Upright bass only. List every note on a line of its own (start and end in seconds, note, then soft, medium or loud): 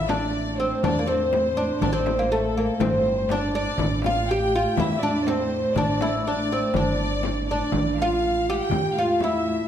0.00 0.72 A1 medium
0.83 1.70 E2 medium
1.81 2.68 A1 medium
2.80 3.67 G1 medium
3.78 4.65 A1 medium
4.77 5.64 E2 medium
5.76 6.62 A1 medium
6.74 7.61 G1 medium
7.72 8.59 A1 medium
8.71 9.58 E2 medium